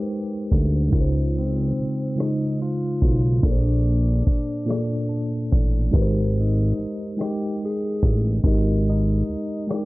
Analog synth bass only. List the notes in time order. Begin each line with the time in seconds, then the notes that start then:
0.52 D2
0.93 C#2
1.79 B1
3.03 B1
3.44 A#1
4.28 A1
5.53 A1
5.94 G#1
6.79 A1
8.03 A1
8.45 G#1
9.29 D2